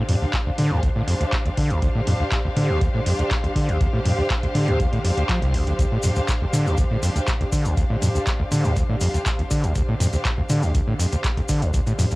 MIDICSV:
0, 0, Header, 1, 4, 480
1, 0, Start_track
1, 0, Key_signature, -1, "minor"
1, 0, Tempo, 495868
1, 1764, Time_signature, 4, 2, 24, 8
1, 11765, End_track
2, 0, Start_track
2, 0, Title_t, "String section"
2, 0, Program_c, 0, 48
2, 0, Note_on_c, 0, 62, 75
2, 0, Note_on_c, 0, 67, 82
2, 0, Note_on_c, 0, 72, 77
2, 0, Note_on_c, 0, 77, 79
2, 11765, Note_off_c, 0, 62, 0
2, 11765, Note_off_c, 0, 67, 0
2, 11765, Note_off_c, 0, 72, 0
2, 11765, Note_off_c, 0, 77, 0
2, 11765, End_track
3, 0, Start_track
3, 0, Title_t, "Acid bass"
3, 0, Program_c, 1, 38
3, 85, Note_on_c, 1, 41, 75
3, 153, Note_off_c, 1, 41, 0
3, 209, Note_on_c, 1, 38, 77
3, 247, Note_off_c, 1, 38, 0
3, 449, Note_on_c, 1, 38, 78
3, 487, Note_off_c, 1, 38, 0
3, 564, Note_on_c, 1, 50, 99
3, 689, Note_on_c, 1, 38, 102
3, 704, Note_off_c, 1, 50, 0
3, 784, Note_off_c, 1, 38, 0
3, 929, Note_on_c, 1, 45, 75
3, 992, Note_off_c, 1, 45, 0
3, 1043, Note_on_c, 1, 41, 74
3, 1112, Note_off_c, 1, 41, 0
3, 1168, Note_on_c, 1, 38, 74
3, 1207, Note_off_c, 1, 38, 0
3, 1409, Note_on_c, 1, 38, 79
3, 1447, Note_off_c, 1, 38, 0
3, 1523, Note_on_c, 1, 50, 101
3, 1649, Note_on_c, 1, 38, 100
3, 1664, Note_off_c, 1, 50, 0
3, 1744, Note_off_c, 1, 38, 0
3, 1763, Note_on_c, 1, 38, 81
3, 1832, Note_off_c, 1, 38, 0
3, 1888, Note_on_c, 1, 45, 80
3, 1952, Note_off_c, 1, 45, 0
3, 2004, Note_on_c, 1, 41, 75
3, 2073, Note_off_c, 1, 41, 0
3, 2129, Note_on_c, 1, 38, 76
3, 2167, Note_off_c, 1, 38, 0
3, 2369, Note_on_c, 1, 38, 76
3, 2407, Note_off_c, 1, 38, 0
3, 2484, Note_on_c, 1, 50, 104
3, 2609, Note_on_c, 1, 38, 99
3, 2624, Note_off_c, 1, 50, 0
3, 2704, Note_off_c, 1, 38, 0
3, 2724, Note_on_c, 1, 38, 83
3, 2792, Note_off_c, 1, 38, 0
3, 2849, Note_on_c, 1, 45, 76
3, 2912, Note_off_c, 1, 45, 0
3, 2964, Note_on_c, 1, 41, 78
3, 3033, Note_off_c, 1, 41, 0
3, 3088, Note_on_c, 1, 38, 73
3, 3126, Note_off_c, 1, 38, 0
3, 3328, Note_on_c, 1, 38, 74
3, 3366, Note_off_c, 1, 38, 0
3, 3443, Note_on_c, 1, 50, 102
3, 3569, Note_on_c, 1, 38, 97
3, 3583, Note_off_c, 1, 50, 0
3, 3664, Note_off_c, 1, 38, 0
3, 3684, Note_on_c, 1, 38, 80
3, 3753, Note_off_c, 1, 38, 0
3, 3809, Note_on_c, 1, 45, 80
3, 3872, Note_off_c, 1, 45, 0
3, 3924, Note_on_c, 1, 41, 73
3, 3993, Note_off_c, 1, 41, 0
3, 4049, Note_on_c, 1, 38, 75
3, 4087, Note_off_c, 1, 38, 0
3, 4289, Note_on_c, 1, 38, 78
3, 4327, Note_off_c, 1, 38, 0
3, 4403, Note_on_c, 1, 50, 102
3, 4529, Note_on_c, 1, 38, 101
3, 4543, Note_off_c, 1, 50, 0
3, 4623, Note_off_c, 1, 38, 0
3, 4643, Note_on_c, 1, 38, 80
3, 4712, Note_off_c, 1, 38, 0
3, 4769, Note_on_c, 1, 45, 75
3, 4832, Note_off_c, 1, 45, 0
3, 4883, Note_on_c, 1, 41, 76
3, 4952, Note_off_c, 1, 41, 0
3, 5008, Note_on_c, 1, 38, 72
3, 5072, Note_off_c, 1, 38, 0
3, 5122, Note_on_c, 1, 53, 84
3, 5226, Note_off_c, 1, 53, 0
3, 5248, Note_on_c, 1, 36, 101
3, 5363, Note_on_c, 1, 38, 73
3, 5378, Note_off_c, 1, 36, 0
3, 5467, Note_off_c, 1, 38, 0
3, 5489, Note_on_c, 1, 38, 77
3, 5552, Note_off_c, 1, 38, 0
3, 5603, Note_on_c, 1, 38, 81
3, 5672, Note_off_c, 1, 38, 0
3, 5728, Note_on_c, 1, 45, 78
3, 5792, Note_off_c, 1, 45, 0
3, 5843, Note_on_c, 1, 41, 75
3, 5912, Note_off_c, 1, 41, 0
3, 5968, Note_on_c, 1, 38, 78
3, 6006, Note_off_c, 1, 38, 0
3, 6209, Note_on_c, 1, 38, 76
3, 6247, Note_off_c, 1, 38, 0
3, 6323, Note_on_c, 1, 50, 101
3, 6449, Note_on_c, 1, 38, 99
3, 6464, Note_off_c, 1, 50, 0
3, 6544, Note_off_c, 1, 38, 0
3, 6563, Note_on_c, 1, 38, 80
3, 6632, Note_off_c, 1, 38, 0
3, 6688, Note_on_c, 1, 45, 74
3, 6752, Note_off_c, 1, 45, 0
3, 6804, Note_on_c, 1, 41, 74
3, 6873, Note_off_c, 1, 41, 0
3, 6928, Note_on_c, 1, 38, 73
3, 6966, Note_off_c, 1, 38, 0
3, 7169, Note_on_c, 1, 38, 78
3, 7207, Note_off_c, 1, 38, 0
3, 7283, Note_on_c, 1, 50, 100
3, 7409, Note_on_c, 1, 38, 102
3, 7423, Note_off_c, 1, 50, 0
3, 7504, Note_off_c, 1, 38, 0
3, 7523, Note_on_c, 1, 38, 82
3, 7592, Note_off_c, 1, 38, 0
3, 7649, Note_on_c, 1, 45, 78
3, 7712, Note_off_c, 1, 45, 0
3, 7764, Note_on_c, 1, 41, 76
3, 7833, Note_off_c, 1, 41, 0
3, 7889, Note_on_c, 1, 38, 76
3, 7927, Note_off_c, 1, 38, 0
3, 8129, Note_on_c, 1, 38, 77
3, 8167, Note_off_c, 1, 38, 0
3, 8243, Note_on_c, 1, 50, 107
3, 8369, Note_on_c, 1, 38, 98
3, 8383, Note_off_c, 1, 50, 0
3, 8464, Note_off_c, 1, 38, 0
3, 8483, Note_on_c, 1, 38, 82
3, 8552, Note_off_c, 1, 38, 0
3, 8609, Note_on_c, 1, 45, 78
3, 8672, Note_off_c, 1, 45, 0
3, 8724, Note_on_c, 1, 41, 75
3, 8793, Note_off_c, 1, 41, 0
3, 8849, Note_on_c, 1, 38, 74
3, 8887, Note_off_c, 1, 38, 0
3, 9089, Note_on_c, 1, 38, 76
3, 9127, Note_off_c, 1, 38, 0
3, 9203, Note_on_c, 1, 50, 98
3, 9328, Note_on_c, 1, 38, 102
3, 9343, Note_off_c, 1, 50, 0
3, 9423, Note_off_c, 1, 38, 0
3, 9443, Note_on_c, 1, 38, 82
3, 9512, Note_off_c, 1, 38, 0
3, 9568, Note_on_c, 1, 45, 78
3, 9632, Note_off_c, 1, 45, 0
3, 9683, Note_on_c, 1, 41, 75
3, 9752, Note_off_c, 1, 41, 0
3, 9807, Note_on_c, 1, 38, 74
3, 9846, Note_off_c, 1, 38, 0
3, 10047, Note_on_c, 1, 38, 81
3, 10086, Note_off_c, 1, 38, 0
3, 10162, Note_on_c, 1, 50, 105
3, 10287, Note_on_c, 1, 38, 100
3, 10302, Note_off_c, 1, 50, 0
3, 10383, Note_off_c, 1, 38, 0
3, 10402, Note_on_c, 1, 38, 79
3, 10472, Note_off_c, 1, 38, 0
3, 10528, Note_on_c, 1, 45, 77
3, 10591, Note_off_c, 1, 45, 0
3, 10643, Note_on_c, 1, 41, 75
3, 10712, Note_off_c, 1, 41, 0
3, 10769, Note_on_c, 1, 38, 76
3, 10807, Note_off_c, 1, 38, 0
3, 11008, Note_on_c, 1, 38, 77
3, 11047, Note_off_c, 1, 38, 0
3, 11123, Note_on_c, 1, 50, 103
3, 11248, Note_on_c, 1, 38, 103
3, 11263, Note_off_c, 1, 50, 0
3, 11343, Note_off_c, 1, 38, 0
3, 11363, Note_on_c, 1, 38, 81
3, 11432, Note_off_c, 1, 38, 0
3, 11488, Note_on_c, 1, 45, 78
3, 11552, Note_off_c, 1, 45, 0
3, 11603, Note_on_c, 1, 41, 76
3, 11672, Note_off_c, 1, 41, 0
3, 11729, Note_on_c, 1, 38, 78
3, 11765, Note_off_c, 1, 38, 0
3, 11765, End_track
4, 0, Start_track
4, 0, Title_t, "Drums"
4, 84, Note_on_c, 9, 46, 105
4, 84, Note_on_c, 9, 47, 84
4, 181, Note_off_c, 9, 46, 0
4, 181, Note_off_c, 9, 47, 0
4, 324, Note_on_c, 9, 36, 122
4, 324, Note_on_c, 9, 42, 79
4, 325, Note_on_c, 9, 39, 120
4, 421, Note_off_c, 9, 36, 0
4, 421, Note_off_c, 9, 42, 0
4, 422, Note_off_c, 9, 39, 0
4, 563, Note_on_c, 9, 46, 91
4, 563, Note_on_c, 9, 47, 85
4, 660, Note_off_c, 9, 46, 0
4, 660, Note_off_c, 9, 47, 0
4, 688, Note_on_c, 9, 47, 78
4, 785, Note_off_c, 9, 47, 0
4, 804, Note_on_c, 9, 36, 122
4, 804, Note_on_c, 9, 42, 81
4, 900, Note_off_c, 9, 42, 0
4, 901, Note_off_c, 9, 36, 0
4, 1044, Note_on_c, 9, 46, 100
4, 1141, Note_off_c, 9, 46, 0
4, 1169, Note_on_c, 9, 42, 52
4, 1266, Note_off_c, 9, 42, 0
4, 1284, Note_on_c, 9, 36, 118
4, 1284, Note_on_c, 9, 42, 80
4, 1285, Note_on_c, 9, 39, 121
4, 1381, Note_off_c, 9, 36, 0
4, 1381, Note_off_c, 9, 42, 0
4, 1382, Note_off_c, 9, 39, 0
4, 1410, Note_on_c, 9, 42, 35
4, 1507, Note_off_c, 9, 42, 0
4, 1524, Note_on_c, 9, 36, 86
4, 1524, Note_on_c, 9, 46, 92
4, 1621, Note_off_c, 9, 36, 0
4, 1621, Note_off_c, 9, 46, 0
4, 1650, Note_on_c, 9, 42, 53
4, 1747, Note_off_c, 9, 42, 0
4, 1764, Note_on_c, 9, 36, 122
4, 1764, Note_on_c, 9, 42, 75
4, 1860, Note_off_c, 9, 36, 0
4, 1861, Note_off_c, 9, 42, 0
4, 2004, Note_on_c, 9, 46, 108
4, 2004, Note_on_c, 9, 47, 86
4, 2101, Note_off_c, 9, 46, 0
4, 2101, Note_off_c, 9, 47, 0
4, 2244, Note_on_c, 9, 36, 122
4, 2244, Note_on_c, 9, 42, 77
4, 2245, Note_on_c, 9, 39, 124
4, 2340, Note_off_c, 9, 36, 0
4, 2341, Note_off_c, 9, 42, 0
4, 2342, Note_off_c, 9, 39, 0
4, 2484, Note_on_c, 9, 46, 92
4, 2484, Note_on_c, 9, 47, 86
4, 2581, Note_off_c, 9, 46, 0
4, 2581, Note_off_c, 9, 47, 0
4, 2724, Note_on_c, 9, 36, 120
4, 2724, Note_on_c, 9, 42, 74
4, 2820, Note_off_c, 9, 36, 0
4, 2821, Note_off_c, 9, 42, 0
4, 2964, Note_on_c, 9, 46, 106
4, 3061, Note_off_c, 9, 46, 0
4, 3089, Note_on_c, 9, 42, 49
4, 3186, Note_off_c, 9, 42, 0
4, 3204, Note_on_c, 9, 36, 122
4, 3204, Note_on_c, 9, 42, 75
4, 3205, Note_on_c, 9, 39, 120
4, 3300, Note_off_c, 9, 36, 0
4, 3301, Note_off_c, 9, 42, 0
4, 3302, Note_off_c, 9, 39, 0
4, 3330, Note_on_c, 9, 42, 34
4, 3427, Note_off_c, 9, 42, 0
4, 3444, Note_on_c, 9, 36, 86
4, 3444, Note_on_c, 9, 46, 90
4, 3541, Note_off_c, 9, 36, 0
4, 3541, Note_off_c, 9, 46, 0
4, 3570, Note_on_c, 9, 42, 50
4, 3667, Note_off_c, 9, 42, 0
4, 3684, Note_on_c, 9, 36, 124
4, 3684, Note_on_c, 9, 42, 75
4, 3781, Note_off_c, 9, 36, 0
4, 3781, Note_off_c, 9, 42, 0
4, 3924, Note_on_c, 9, 46, 102
4, 3924, Note_on_c, 9, 47, 90
4, 4021, Note_off_c, 9, 46, 0
4, 4021, Note_off_c, 9, 47, 0
4, 4164, Note_on_c, 9, 36, 119
4, 4164, Note_on_c, 9, 42, 76
4, 4165, Note_on_c, 9, 39, 116
4, 4261, Note_off_c, 9, 36, 0
4, 4261, Note_off_c, 9, 42, 0
4, 4262, Note_off_c, 9, 39, 0
4, 4289, Note_on_c, 9, 42, 35
4, 4386, Note_off_c, 9, 42, 0
4, 4403, Note_on_c, 9, 46, 92
4, 4403, Note_on_c, 9, 47, 90
4, 4500, Note_off_c, 9, 46, 0
4, 4500, Note_off_c, 9, 47, 0
4, 4529, Note_on_c, 9, 42, 35
4, 4529, Note_on_c, 9, 47, 84
4, 4626, Note_off_c, 9, 42, 0
4, 4626, Note_off_c, 9, 47, 0
4, 4644, Note_on_c, 9, 36, 123
4, 4644, Note_on_c, 9, 42, 75
4, 4740, Note_off_c, 9, 42, 0
4, 4741, Note_off_c, 9, 36, 0
4, 4769, Note_on_c, 9, 42, 35
4, 4866, Note_off_c, 9, 42, 0
4, 4884, Note_on_c, 9, 46, 108
4, 4981, Note_off_c, 9, 46, 0
4, 5009, Note_on_c, 9, 42, 49
4, 5106, Note_off_c, 9, 42, 0
4, 5124, Note_on_c, 9, 36, 119
4, 5124, Note_on_c, 9, 42, 73
4, 5125, Note_on_c, 9, 39, 113
4, 5221, Note_off_c, 9, 36, 0
4, 5221, Note_off_c, 9, 42, 0
4, 5222, Note_off_c, 9, 39, 0
4, 5250, Note_on_c, 9, 42, 34
4, 5347, Note_off_c, 9, 42, 0
4, 5364, Note_on_c, 9, 36, 84
4, 5364, Note_on_c, 9, 46, 90
4, 5461, Note_off_c, 9, 36, 0
4, 5461, Note_off_c, 9, 46, 0
4, 5490, Note_on_c, 9, 42, 49
4, 5587, Note_off_c, 9, 42, 0
4, 5604, Note_on_c, 9, 36, 117
4, 5605, Note_on_c, 9, 42, 74
4, 5616, Note_on_c, 9, 70, 50
4, 5701, Note_off_c, 9, 36, 0
4, 5702, Note_off_c, 9, 42, 0
4, 5712, Note_off_c, 9, 70, 0
4, 5833, Note_on_c, 9, 70, 90
4, 5845, Note_on_c, 9, 46, 103
4, 5845, Note_on_c, 9, 47, 92
4, 5929, Note_off_c, 9, 70, 0
4, 5942, Note_off_c, 9, 46, 0
4, 5942, Note_off_c, 9, 47, 0
4, 5960, Note_on_c, 9, 70, 40
4, 6057, Note_off_c, 9, 70, 0
4, 6081, Note_on_c, 9, 70, 55
4, 6084, Note_on_c, 9, 36, 116
4, 6085, Note_on_c, 9, 42, 78
4, 6086, Note_on_c, 9, 39, 114
4, 6178, Note_off_c, 9, 70, 0
4, 6181, Note_off_c, 9, 36, 0
4, 6181, Note_off_c, 9, 42, 0
4, 6183, Note_off_c, 9, 39, 0
4, 6325, Note_on_c, 9, 46, 91
4, 6325, Note_on_c, 9, 47, 94
4, 6325, Note_on_c, 9, 70, 99
4, 6422, Note_off_c, 9, 46, 0
4, 6422, Note_off_c, 9, 47, 0
4, 6422, Note_off_c, 9, 70, 0
4, 6456, Note_on_c, 9, 70, 37
4, 6552, Note_off_c, 9, 70, 0
4, 6558, Note_on_c, 9, 70, 53
4, 6564, Note_on_c, 9, 36, 119
4, 6564, Note_on_c, 9, 42, 74
4, 6654, Note_off_c, 9, 70, 0
4, 6661, Note_off_c, 9, 36, 0
4, 6661, Note_off_c, 9, 42, 0
4, 6803, Note_on_c, 9, 70, 98
4, 6804, Note_on_c, 9, 46, 105
4, 6899, Note_off_c, 9, 70, 0
4, 6901, Note_off_c, 9, 46, 0
4, 6930, Note_on_c, 9, 42, 50
4, 6932, Note_on_c, 9, 70, 39
4, 7027, Note_off_c, 9, 42, 0
4, 7028, Note_off_c, 9, 70, 0
4, 7041, Note_on_c, 9, 70, 50
4, 7044, Note_on_c, 9, 36, 112
4, 7045, Note_on_c, 9, 42, 75
4, 7046, Note_on_c, 9, 39, 110
4, 7138, Note_off_c, 9, 70, 0
4, 7141, Note_off_c, 9, 36, 0
4, 7142, Note_off_c, 9, 42, 0
4, 7143, Note_off_c, 9, 39, 0
4, 7171, Note_on_c, 9, 42, 35
4, 7268, Note_off_c, 9, 42, 0
4, 7284, Note_on_c, 9, 36, 87
4, 7284, Note_on_c, 9, 70, 83
4, 7285, Note_on_c, 9, 46, 88
4, 7381, Note_off_c, 9, 36, 0
4, 7381, Note_off_c, 9, 70, 0
4, 7382, Note_off_c, 9, 46, 0
4, 7406, Note_on_c, 9, 70, 39
4, 7411, Note_on_c, 9, 42, 50
4, 7503, Note_off_c, 9, 70, 0
4, 7507, Note_off_c, 9, 42, 0
4, 7523, Note_on_c, 9, 70, 49
4, 7524, Note_on_c, 9, 36, 114
4, 7525, Note_on_c, 9, 42, 75
4, 7619, Note_off_c, 9, 70, 0
4, 7621, Note_off_c, 9, 36, 0
4, 7621, Note_off_c, 9, 42, 0
4, 7764, Note_on_c, 9, 46, 101
4, 7764, Note_on_c, 9, 47, 93
4, 7766, Note_on_c, 9, 70, 81
4, 7861, Note_off_c, 9, 46, 0
4, 7861, Note_off_c, 9, 47, 0
4, 7862, Note_off_c, 9, 70, 0
4, 7891, Note_on_c, 9, 70, 39
4, 7988, Note_off_c, 9, 70, 0
4, 8003, Note_on_c, 9, 70, 56
4, 8004, Note_on_c, 9, 36, 109
4, 8005, Note_on_c, 9, 42, 78
4, 8006, Note_on_c, 9, 39, 113
4, 8100, Note_off_c, 9, 70, 0
4, 8101, Note_off_c, 9, 36, 0
4, 8101, Note_off_c, 9, 42, 0
4, 8103, Note_off_c, 9, 39, 0
4, 8244, Note_on_c, 9, 70, 84
4, 8245, Note_on_c, 9, 46, 86
4, 8245, Note_on_c, 9, 47, 91
4, 8341, Note_off_c, 9, 46, 0
4, 8341, Note_off_c, 9, 47, 0
4, 8341, Note_off_c, 9, 70, 0
4, 8367, Note_on_c, 9, 70, 37
4, 8370, Note_on_c, 9, 47, 86
4, 8464, Note_off_c, 9, 70, 0
4, 8467, Note_off_c, 9, 47, 0
4, 8483, Note_on_c, 9, 70, 47
4, 8484, Note_on_c, 9, 36, 113
4, 8484, Note_on_c, 9, 42, 76
4, 8580, Note_off_c, 9, 70, 0
4, 8581, Note_off_c, 9, 36, 0
4, 8581, Note_off_c, 9, 42, 0
4, 8718, Note_on_c, 9, 70, 84
4, 8725, Note_on_c, 9, 46, 101
4, 8815, Note_off_c, 9, 70, 0
4, 8821, Note_off_c, 9, 46, 0
4, 8850, Note_on_c, 9, 42, 50
4, 8852, Note_on_c, 9, 70, 39
4, 8947, Note_off_c, 9, 42, 0
4, 8949, Note_off_c, 9, 70, 0
4, 8962, Note_on_c, 9, 70, 51
4, 8964, Note_on_c, 9, 36, 115
4, 8965, Note_on_c, 9, 42, 77
4, 8966, Note_on_c, 9, 39, 112
4, 9059, Note_off_c, 9, 70, 0
4, 9061, Note_off_c, 9, 36, 0
4, 9062, Note_off_c, 9, 42, 0
4, 9063, Note_off_c, 9, 39, 0
4, 9090, Note_on_c, 9, 42, 35
4, 9187, Note_off_c, 9, 42, 0
4, 9203, Note_on_c, 9, 70, 91
4, 9204, Note_on_c, 9, 36, 81
4, 9205, Note_on_c, 9, 46, 85
4, 9300, Note_off_c, 9, 36, 0
4, 9300, Note_off_c, 9, 70, 0
4, 9301, Note_off_c, 9, 46, 0
4, 9328, Note_on_c, 9, 70, 35
4, 9330, Note_on_c, 9, 42, 53
4, 9425, Note_off_c, 9, 70, 0
4, 9427, Note_off_c, 9, 42, 0
4, 9441, Note_on_c, 9, 70, 49
4, 9444, Note_on_c, 9, 36, 113
4, 9444, Note_on_c, 9, 42, 83
4, 9537, Note_off_c, 9, 70, 0
4, 9540, Note_off_c, 9, 36, 0
4, 9541, Note_off_c, 9, 42, 0
4, 9684, Note_on_c, 9, 46, 98
4, 9684, Note_on_c, 9, 47, 90
4, 9690, Note_on_c, 9, 70, 89
4, 9781, Note_off_c, 9, 46, 0
4, 9781, Note_off_c, 9, 47, 0
4, 9787, Note_off_c, 9, 70, 0
4, 9805, Note_on_c, 9, 70, 39
4, 9901, Note_off_c, 9, 70, 0
4, 9924, Note_on_c, 9, 36, 110
4, 9924, Note_on_c, 9, 42, 80
4, 9925, Note_on_c, 9, 39, 117
4, 9925, Note_on_c, 9, 70, 49
4, 10020, Note_off_c, 9, 36, 0
4, 10021, Note_off_c, 9, 42, 0
4, 10022, Note_off_c, 9, 39, 0
4, 10022, Note_off_c, 9, 70, 0
4, 10159, Note_on_c, 9, 70, 82
4, 10164, Note_on_c, 9, 46, 86
4, 10164, Note_on_c, 9, 47, 91
4, 10256, Note_off_c, 9, 70, 0
4, 10260, Note_off_c, 9, 46, 0
4, 10260, Note_off_c, 9, 47, 0
4, 10285, Note_on_c, 9, 70, 34
4, 10382, Note_off_c, 9, 70, 0
4, 10403, Note_on_c, 9, 70, 47
4, 10404, Note_on_c, 9, 36, 110
4, 10404, Note_on_c, 9, 42, 79
4, 10500, Note_off_c, 9, 70, 0
4, 10501, Note_off_c, 9, 36, 0
4, 10501, Note_off_c, 9, 42, 0
4, 10644, Note_on_c, 9, 46, 94
4, 10647, Note_on_c, 9, 70, 87
4, 10741, Note_off_c, 9, 46, 0
4, 10744, Note_off_c, 9, 70, 0
4, 10765, Note_on_c, 9, 70, 35
4, 10769, Note_on_c, 9, 42, 52
4, 10862, Note_off_c, 9, 70, 0
4, 10866, Note_off_c, 9, 42, 0
4, 10882, Note_on_c, 9, 70, 50
4, 10884, Note_on_c, 9, 36, 112
4, 10884, Note_on_c, 9, 42, 80
4, 10885, Note_on_c, 9, 39, 110
4, 10978, Note_off_c, 9, 70, 0
4, 10981, Note_off_c, 9, 36, 0
4, 10981, Note_off_c, 9, 42, 0
4, 10982, Note_off_c, 9, 39, 0
4, 11010, Note_on_c, 9, 42, 37
4, 11107, Note_off_c, 9, 42, 0
4, 11118, Note_on_c, 9, 70, 81
4, 11124, Note_on_c, 9, 36, 79
4, 11125, Note_on_c, 9, 46, 86
4, 11215, Note_off_c, 9, 70, 0
4, 11220, Note_off_c, 9, 36, 0
4, 11222, Note_off_c, 9, 46, 0
4, 11248, Note_on_c, 9, 70, 36
4, 11250, Note_on_c, 9, 42, 53
4, 11344, Note_off_c, 9, 70, 0
4, 11347, Note_off_c, 9, 42, 0
4, 11361, Note_on_c, 9, 70, 50
4, 11364, Note_on_c, 9, 36, 111
4, 11365, Note_on_c, 9, 42, 85
4, 11458, Note_off_c, 9, 70, 0
4, 11461, Note_off_c, 9, 36, 0
4, 11462, Note_off_c, 9, 42, 0
4, 11487, Note_on_c, 9, 70, 37
4, 11490, Note_on_c, 9, 42, 39
4, 11584, Note_off_c, 9, 70, 0
4, 11587, Note_off_c, 9, 42, 0
4, 11605, Note_on_c, 9, 46, 99
4, 11605, Note_on_c, 9, 47, 89
4, 11607, Note_on_c, 9, 70, 81
4, 11702, Note_off_c, 9, 46, 0
4, 11702, Note_off_c, 9, 47, 0
4, 11704, Note_off_c, 9, 70, 0
4, 11722, Note_on_c, 9, 70, 36
4, 11730, Note_on_c, 9, 42, 40
4, 11765, Note_off_c, 9, 42, 0
4, 11765, Note_off_c, 9, 70, 0
4, 11765, End_track
0, 0, End_of_file